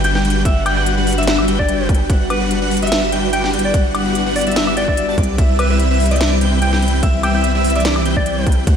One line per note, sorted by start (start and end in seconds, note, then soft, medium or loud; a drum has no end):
0.00 5.16 G1 medium
0.00 8.63 B3 medium
0.00 2.06 D4 medium
0.00 5.14 F#4 medium
0.00 8.63 G4 loud
0.04 0.22 G3 medium
0.04 0.22 D4 medium
0.04 0.22 F#4 medium
0.04 0.22 B4 medium
0.04 0.22 G5 medium
0.04 0.11 G5 medium
0.04 closed hi-hat medium
0.15 0.21 G5 medium
0.15 snare soft
0.25 0.43 G3 loud
0.25 0.43 D4 medium
0.25 0.43 F#4 medium
0.25 0.43 B4 medium
0.25 0.43 G5 loud
0.25 closed hi-hat medium
0.30 closed hi-hat medium
0.45 0.64 G3 loud
0.45 0.64 F#4 medium
0.45 0.64 B4 medium
0.45 0.63 E5 medium
0.45 0.64 F#5 loud
0.45 kick loud
0.45 closed hi-hat medium
0.45 ride soft
0.66 0.95 G3 medium
0.66 0.95 D4 medium
0.66 0.95 F#4 medium
0.66 0.95 B4 medium
0.66 0.95 F#5 loud
0.66 0.73 G5 medium
0.66 closed hi-hat medium
0.66 high woodblock medium
0.77 0.83 G5 medium
0.86 closed hi-hat medium
0.97 1.15 G3 loud
0.97 1.15 D4 medium
0.97 1.15 F#4 medium
0.97 1.15 B4 medium
0.97 1.15 F#5 loud
1.07 open hi-hat loud
1.12 closed hi-hat medium
1.18 1.25 G3 medium
1.18 1.25 D4 medium
1.18 1.25 F#4 medium
1.18 1.25 B4 medium
1.18 1.25 E5 loud
1.18 1.25 E5 medium
1.18 1.24 E5 loud
1.18 closed hi-hat soft
1.23 closed hi-hat medium
1.27 1.46 G3 medium
1.27 1.46 D4 medium
1.27 1.46 F#4 medium
1.27 1.46 B4 medium
1.27 1.34 E5 medium
1.27 1.46 E5 loud
1.27 snare loud
1.27 closed hi-hat medium
1.27 ride soft
1.39 high woodblock medium
1.48 1.66 G3 medium
1.48 1.66 D4 medium
1.48 1.66 F#4 medium
1.48 1.66 B4 medium
1.48 1.66 G5 loud
1.48 closed hi-hat medium
1.59 2.00 D5 loud
1.59 kick medium
1.69 1.87 G3 medium
1.69 1.87 D4 medium
1.69 1.87 F#4 medium
1.69 1.87 B4 medium
1.69 1.87 G5 medium
1.69 1.87 G5 loud
1.69 closed hi-hat medium
1.89 2.07 G3 loud
1.89 2.07 D4 medium
1.89 2.07 F#4 medium
1.89 2.07 B4 loud
1.89 2.07 G5 loud
1.89 kick loud
1.89 closed hi-hat medium
1.95 closed hi-hat medium
2.10 2.28 G3 loud
2.10 2.28 D4 medium
2.10 5.15 E4 medium
2.10 2.28 F#4 loud
2.10 2.28 B4 medium
2.10 2.28 F#5 loud
2.10 kick loud
2.10 closed hi-hat medium
2.10 ride soft
2.30 2.59 G3 medium
2.30 2.59 D4 medium
2.30 2.59 F#4 medium
2.30 2.59 B4 medium
2.30 2.37 B4 loud
2.30 2.59 F#5 loud
2.30 2.59 F#5 medium
2.30 closed hi-hat medium
2.30 high woodblock medium
2.41 2.47 B4 medium
2.51 closed hi-hat medium
2.62 2.80 G3 medium
2.62 2.80 D4 medium
2.62 2.80 F#4 medium
2.62 2.80 B4 medium
2.62 2.80 F#5 loud
2.71 open hi-hat medium
2.77 closed hi-hat medium
2.82 2.90 G3 medium
2.82 2.90 D4 medium
2.82 2.90 F#4 medium
2.82 2.90 B4 medium
2.82 2.90 E5 medium
2.82 3.00 E5 medium
2.82 2.90 E5 loud
2.82 closed hi-hat medium
2.87 closed hi-hat medium
2.92 3.10 G3 medium
2.92 3.10 D4 medium
2.92 3.10 F#4 medium
2.92 3.10 B4 medium
2.92 3.10 E5 loud
2.92 snare loud
2.92 closed hi-hat medium
2.92 ride soft
3.12 3.31 G3 medium
3.12 3.31 D4 medium
3.12 3.31 F#4 medium
3.12 3.31 B4 medium
3.12 3.31 G5 loud
3.12 closed hi-hat medium
3.33 3.51 G3 medium
3.33 3.51 D4 medium
3.33 3.51 F#4 medium
3.33 3.51 B4 medium
3.33 3.51 G5 medium
3.33 3.40 G5 medium
3.33 closed hi-hat medium
3.44 3.50 G5 medium
3.44 snare soft
3.53 3.72 G3 loud
3.53 3.72 D4 medium
3.53 3.72 F#4 medium
3.53 3.72 B4 medium
3.53 3.72 G5 loud
3.53 closed hi-hat medium
3.59 closed hi-hat medium
3.65 3.82 D5 medium
3.74 3.92 G3 loud
3.74 3.92 D4 loud
3.74 3.92 F#4 medium
3.74 3.92 B4 medium
3.74 3.92 F#5 loud
3.74 kick loud
3.74 closed hi-hat medium
3.74 ride medium
3.94 4.24 G3 medium
3.94 4.24 D4 medium
3.94 4.24 F#4 medium
3.94 4.24 B4 medium
3.94 4.23 F#5 loud
3.94 4.24 F#5 loud
3.94 closed hi-hat medium
3.94 high woodblock medium
4.15 closed hi-hat medium
4.26 4.44 G3 medium
4.26 4.44 D4 medium
4.26 4.44 F#4 medium
4.26 4.44 B4 medium
4.26 4.44 F#5 loud
4.36 4.43 D5 medium
4.36 open hi-hat medium
4.41 closed hi-hat medium
4.47 4.54 G3 medium
4.47 4.54 D4 medium
4.47 4.54 F#4 medium
4.47 4.54 B4 medium
4.47 4.53 D5 medium
4.47 4.54 E5 medium
4.47 4.54 E5 loud
4.47 closed hi-hat soft
4.52 closed hi-hat medium
4.56 4.75 G3 medium
4.56 4.75 D4 medium
4.56 4.75 F#4 medium
4.56 4.75 B4 medium
4.56 4.74 E5 loud
4.56 4.75 E5 loud
4.56 4.63 E5 medium
4.56 snare loud
4.56 closed hi-hat medium
4.56 ride soft
4.67 4.73 E5 medium
4.67 high woodblock medium
4.77 4.85 G3 medium
4.77 4.85 D4 medium
4.77 4.85 F#4 medium
4.77 4.85 B4 medium
4.77 4.86 D5 medium
4.77 4.85 G5 loud
4.77 4.85 G5 medium
4.77 closed hi-hat medium
4.88 5.06 G3 medium
4.88 5.06 D4 medium
4.88 5.06 F#4 medium
4.88 5.06 B4 medium
4.88 5.22 D5 loud
4.88 5.06 E5 medium
4.88 kick medium
4.97 closed hi-hat medium
5.08 5.16 G3 medium
5.08 5.16 D4 medium
5.08 5.16 F#4 medium
5.08 5.16 B4 medium
5.08 5.16 A5 medium
5.18 8.65 C2 medium
5.18 8.64 E3 medium
5.18 5.36 G3 loud
5.18 8.77 C4 medium
5.18 5.36 C4 medium
5.18 5.36 E4 medium
5.18 5.36 B4 medium
5.18 5.36 D5 loud
5.18 kick loud
5.18 closed hi-hat soft
5.23 closed hi-hat medium
5.38 5.57 G3 loud
5.38 5.57 C4 medium
5.38 5.57 E4 loud
5.38 5.57 B4 medium
5.38 5.57 E5 loud
5.38 kick loud
5.38 closed hi-hat medium
5.38 ride medium
5.59 5.88 G3 medium
5.59 5.88 C4 medium
5.59 5.88 E4 medium
5.59 5.88 B4 medium
5.59 5.66 B4 loud
5.59 5.88 E5 medium
5.59 5.88 E5 loud
5.59 closed hi-hat medium
5.59 high woodblock medium
5.70 5.76 B4 medium
5.80 closed hi-hat medium
5.90 6.08 G3 medium
5.90 6.08 C4 medium
5.90 6.08 E4 medium
5.90 6.08 B4 medium
5.90 6.08 E5 loud
6.00 open hi-hat medium
6.06 closed hi-hat medium
6.11 6.18 G3 medium
6.11 6.18 C4 medium
6.11 6.18 E4 medium
6.11 6.18 B4 medium
6.11 6.18 D5 medium
6.11 6.29 E5 medium
6.11 closed hi-hat soft
6.16 closed hi-hat medium
6.21 6.39 G3 medium
6.21 6.39 C4 medium
6.21 6.39 E4 medium
6.21 6.39 B4 medium
6.21 6.39 D5 medium
6.21 6.39 D5 loud
6.21 snare loud
6.21 closed hi-hat medium
6.21 ride soft
6.41 6.59 G3 medium
6.41 6.59 C4 medium
6.41 6.59 E4 medium
6.41 6.59 B4 medium
6.41 6.59 G5 loud
6.41 closed hi-hat medium
6.62 6.80 G3 medium
6.62 6.80 C4 medium
6.62 6.80 E4 medium
6.62 6.80 B4 medium
6.62 6.80 G5 medium
6.62 6.80 G5 loud
6.62 6.69 G5 medium
6.62 closed hi-hat medium
6.73 6.79 G5 medium
6.73 snare soft
6.82 7.01 G3 loud
6.82 7.01 C4 medium
6.82 7.00 E4 medium
6.82 7.00 B4 medium
6.82 7.01 G5 loud
6.82 closed hi-hat soft
6.88 closed hi-hat medium
7.03 7.21 G3 loud
7.03 7.21 C4 medium
7.03 7.21 E4 medium
7.03 7.21 E5 loud
7.03 kick loud
7.03 closed hi-hat medium
7.03 ride medium
7.23 7.52 G3 medium
7.23 7.52 C4 medium
7.23 7.52 E4 medium
7.23 7.52 B4 medium
7.23 7.52 E5 loud
7.23 7.31 G5 loud
7.23 closed hi-hat medium
7.23 high woodblock medium
7.35 7.41 G5 medium
7.44 closed hi-hat medium
7.55 7.73 G3 loud
7.55 7.73 C4 medium
7.55 7.73 E4 medium
7.55 7.73 B4 medium
7.55 7.73 E5 loud
7.64 open hi-hat loud
7.70 closed hi-hat medium
7.75 7.83 G3 medium
7.75 7.83 C4 medium
7.75 7.83 E4 medium
7.75 7.83 B4 medium
7.75 7.83 D5 loud
7.75 7.83 D5 medium
7.75 7.82 E5 medium
7.75 closed hi-hat soft
7.80 closed hi-hat medium
7.85 8.03 G3 medium
7.85 8.03 C4 medium
7.85 8.03 E4 medium
7.85 8.03 B4 medium
7.85 8.03 D5 loud
7.85 7.92 E5 medium
7.85 snare loud
7.85 closed hi-hat medium
7.85 ride soft
7.96 high woodblock medium
8.05 8.24 G3 medium
8.05 8.24 C4 medium
8.05 8.24 E4 medium
8.05 8.24 B4 medium
8.05 8.24 G5 loud
8.05 closed hi-hat medium
8.17 8.58 D5 loud
8.17 kick medium
8.26 8.44 G3 medium
8.26 8.44 C4 medium
8.26 8.44 E4 medium
8.26 8.44 B4 medium
8.26 8.44 G5 loud
8.26 8.44 G5 medium
8.26 closed hi-hat medium
8.47 8.65 G3 loud
8.47 8.65 C4 medium
8.47 8.65 E4 medium
8.47 8.65 B4 medium
8.47 8.65 G5 loud
8.47 kick loud
8.47 closed hi-hat soft
8.52 closed hi-hat medium
8.67 8.77 D2 medium
8.67 8.77 D3 medium
8.67 8.77 A3 loud
8.67 8.77 A3 medium
8.67 8.77 D4 medium
8.67 8.77 F#4 loud
8.67 8.77 C5 loud
8.67 8.77 F#5 loud
8.67 kick loud
8.67 closed hi-hat medium
8.67 ride medium